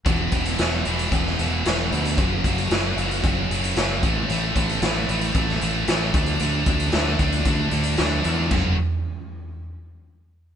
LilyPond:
<<
  \new Staff \with { instrumentName = "Distorted electric guitar" } { \clef bass \time 4/4 \key fis \minor \tempo 4 = 114 <e, b, e>8 <e, b, e>8 <e, b, e>8 <e, b, e>8 <e, b, e>8 <e, b, e>8 <e, b, e>8 <e, b, e>8 | <fis, cis fis>8 <fis, cis fis>8 <fis, cis fis>8 <fis, cis fis>8 <fis, cis fis>8 <fis, cis fis>8 <fis, cis fis>8 <a, e a>8 | <a, e a>8 <a, e a>8 <a, e a>8 <a, e a>8 <a, e a>8 <a, e a>8 <a, e a>8 <d a d'>8 | <d a d'>8 <d a d'>8 <d a d'>8 <d a d'>8 <d a d'>8 <d a d'>8 <d a d'>8 <d a d'>8 |
<fis, cis fis>8 r2. r8 | }
  \new Staff \with { instrumentName = "Fingered electric bass" } { \clef bass \time 4/4 \key fis \minor e,,8 e,,8 e,,8 e,,8 e,,8 e,,8 e,,8 d,8 | fis,,8 fis,,8 fis,,8 fis,,8 fis,,8 fis,,8 fis,,8 a,,8 | a,,8 a,,8 a,,8 a,,8 a,,8 a,,8 a,,8 d,8 | d,8 d,8 d,8 d,8 d,8 d,8 d,8 e,8 |
fis,,8 r2. r8 | }
  \new DrumStaff \with { instrumentName = "Drums" } \drummode { \time 4/4 <hh bd>8 <hh bd>16 hh16 <hh sn>8 hh16 hh16 <hh bd>16 sn16 hh8 <hh sn>8 hh16 hh16 | <hh bd>8 <hh bd>16 hh16 <hh sn>8 hh16 hh16 <hh bd>8 hh16 hh16 <hh sn>8 <hh bd>8 | hh8 <hh bd>16 hh16 <hh sn>8 hh16 hh16 <hh bd>16 sn16 hh8 <hh sn>8 <hh bd>16 hh16 | hh8 <hh bd>16 hh16 <hh sn>8 <hh bd>16 hh16 <hh bd>8 hh16 hh16 <hh sn>8 hh8 |
<cymc bd tomfh>4 r4 r4 r4 | }
>>